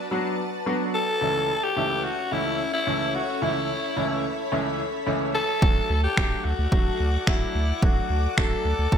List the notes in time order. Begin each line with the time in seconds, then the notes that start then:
Already playing: D4 F#4 B4 D5 A5
0.11 F#3 B3 D4 F#4
0.66 F#3 B3 D4 F#4
0.94 A4
1.21 C#2 E3 A3 C#4 E4 A4 C#5 E5 C#6
1.63 G4
1.76 C#2 E3 A3 C#4 E4
2.05 F#4
2.32 C#2 E3 A3 C#4 E4
2.74 E4
2.87 C#2 E3 A3 C#4 E4
3.15 F#4
3.42 C#2 E3 A3 C#4 E4 B5
3.96 C#2 E3 A3 C#4 E4
4.52 C#2 E3 A3 C#4 E4
5.07 C#2 E3 A3 C#4 E4
5.35 A4
5.62 D1 F#3 A3 D4 F#4 D5 F#5 D6, kick
5.90 D2
6.03 G4
6.16 D1 F#3 A3 D4 F#4, finger snap, kick
6.45 D2 F#4
6.59 D2
6.71 D1 F#3 A3 D4 F#4, kick
7.00 D2
7.27 D1 F#3 A3 D4 E4 F#4, finger snap, kick
7.55 D2
7.82 D1 F#3 A3 D4 F#4, kick
8.10 D2
8.37 D1 F#3 A3 D4 F#4 A4, finger snap, kick
8.65 D2
8.79 D2
8.92 D1 F#3 A3 D4 F#4, kick